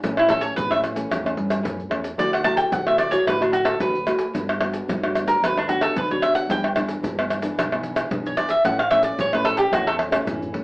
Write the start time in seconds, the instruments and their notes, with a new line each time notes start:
0.03 fingered electric bass A1, nylon-string guitar A2 E3 A3 C#4, pandeiro, shaker, surdo
0.17 cavaquinho E4, pandeiro, tamborim, shaker
0.28 nylon-string guitar E3 A3 C#4, cavaquinho A4, pandeiro, tamborim, shaker, surdo
0.41 cavaquinho C#5, pandeiro, shaker
0.56 fingered electric bass A1, nylon-string guitar E3, cavaquinho B4, pandeiro, shaker, surdo
0.70 nylon-string guitar E3 A3 C#4, cavaquinho E5, pandeiro, tamborim, shaker
0.84 pandeiro, tamborim, shaker
0.95 nylon-string guitar E3 A3 C#4, pandeiro, shaker
1.10 fingered electric bass E2, nylon-string guitar A2, pandeiro, tamborim, shaker, surdo
1.24 nylon-string guitar E3 A3 C#4, pandeiro, tamborim, shaker
1.37 fingered electric bass G2, pandeiro
1.50 pandeiro, tamborim, shaker
1.63 fingered electric bass F#2, nylon-string guitar E3 A3 C#4, pandeiro, shaker, surdo
1.80 pandeiro, shaker
1.89 fingered electric bass E2, nylon-string guitar E3 A3 C#4, pandeiro, tamborim
2.04 pandeiro, shaker
2.18 fingered electric bass D2, nylon-string guitar D3 A3 E4 F#4, cavaquinho D5, pandeiro, shaker, surdo
2.33 cavaquinho F#5, pandeiro, tamborim, shaker
2.44 nylon-string guitar A3 E4 F#4, cavaquinho A5, pandeiro, tamborim, shaker, surdo
2.57 cavaquinho G5, pandeiro, shaker
2.72 fingered electric bass D2, nylon-string guitar A2, cavaquinho F#5, pandeiro, shaker, surdo
2.85 nylon-string guitar A3 E4 F#4, cavaquinho E5, pandeiro, tamborim, shaker
2.98 cavaquinho D5, pandeiro, tamborim, shaker
3.11 nylon-string guitar A3 E4 F#4, cavaquinho C#5, pandeiro, shaker
3.26 fingered electric bass A1, nylon-string guitar D3, cavaquinho B4, pandeiro, tamborim, shaker, surdo
3.40 nylon-string guitar A3 E4 F#4, cavaquinho D4, pandeiro, tamborim, shaker
3.53 cavaquinho F#4, pandeiro, shaker
3.65 cavaquinho A4, pandeiro, tamborim, shaker
3.79 fingered electric bass D2, nylon-string guitar A2 A3 E4 F#4, cavaquinho B4, pandeiro, shaker, surdo
3.95 pandeiro, shaker
4.06 nylon-string guitar A3 E4 F#4, pandeiro, tamborim, shaker
4.19 pandeiro, shaker
4.33 fingered electric bass G1, nylon-string guitar G2 F#3 B3 D4, pandeiro, shaker, surdo
4.49 pandeiro, tamborim, shaker
4.59 nylon-string guitar F#3 B3 D4, pandeiro, tamborim
4.74 pandeiro, shaker
4.88 fingered electric bass G1, nylon-string guitar D3, pandeiro, shaker, surdo
5.03 nylon-string guitar F#3 B3 D4, pandeiro, tamborim, shaker
5.15 pandeiro, tamborim, shaker
5.26 nylon-string guitar F#3 B3 D4, cavaquinho A#4, pandeiro, shaker
5.42 fingered electric bass D2, nylon-string guitar G2 F#3 B3 D4, cavaquinho B4, pandeiro, tamborim, shaker, surdo
5.58 cavaquinho D4, pandeiro, tamborim, shaker
5.68 nylon-string guitar F#3 B3 D4, cavaquinho F#4, pandeiro, shaker
5.81 cavaquinho A4, pandeiro, tamborim, shaker
5.96 fingered electric bass D2, nylon-string guitar D3, cavaquinho B4, pandeiro, shaker, surdo
6.11 nylon-string guitar F#3 B3 D4, cavaquinho C#5, pandeiro, shaker
6.22 cavaquinho E5, pandeiro, tamborim, shaker
6.35 cavaquinho F#5, pandeiro, shaker
6.49 fingered electric bass G1, nylon-string guitar G2 E3 B3 D4, cavaquinho G5, pandeiro, shaker, surdo
6.64 pandeiro, tamborim, shaker
6.76 nylon-string guitar E3 B3 D4, pandeiro, tamborim, shaker, surdo
6.88 pandeiro, shaker
7.03 fingered electric bass G1, nylon-string guitar G2, pandeiro, shaker, surdo
7.18 nylon-string guitar E3 B3 D4, pandeiro, tamborim, shaker
7.30 pandeiro, tamborim, shaker
7.42 nylon-string guitar E3 B3 D4, pandeiro, shaker
7.57 fingered electric bass B1, nylon-string guitar G2, pandeiro, tamborim, shaker, surdo
7.72 nylon-string guitar E3 B3 D4, pandeiro, tamborim, shaker
7.83 pandeiro, shaker
7.96 pandeiro, tamborim, shaker
8.11 fingered electric bass B1, nylon-string guitar G2 E3 B3 D4, pandeiro, shaker, surdo
8.26 cavaquinho C#5, pandeiro, shaker
8.37 nylon-string guitar E3 B3 D4, cavaquinho D5, pandeiro, tamborim, shaker
8.49 cavaquinho E5, pandeiro, shaker
8.64 fingered electric bass A1, nylon-string guitar A2 E3 A3 C#4, cavaquinho F#5, pandeiro, shaker, surdo
8.79 cavaquinho F5, pandeiro, tamborim, shaker
8.91 nylon-string guitar E3 A3 C#4, cavaquinho E5, pandeiro, tamborim, shaker, surdo
9.03 cavaquinho D5, pandeiro, shaker
9.19 fingered electric bass A1, nylon-string guitar E3, cavaquinho C#5, pandeiro, shaker, surdo
9.33 nylon-string guitar E3 A3 C#4, cavaquinho B4, pandeiro, tamborim, shaker
9.45 cavaquinho A4, pandeiro, tamborim, shaker
9.57 cavaquinho G4, pandeiro, shaker
9.71 fingered electric bass E2, nylon-string guitar A2 E3 A3 C#4, cavaquinho F#4, pandeiro, tamborim, shaker, surdo
9.87 cavaquinho A4, pandeiro, tamborim, shaker
9.99 pandeiro, tamborim
10.11 nylon-string guitar E3 A3 C#4, pandeiro, tamborim, shaker
10.25 fingered electric bass A1, nylon-string guitar E3, surdo, pandeiro, shaker
10.42 surdo, pandeiro, shaker
10.52 nylon-string guitar E3 A3 C#4, pandeiro, surdo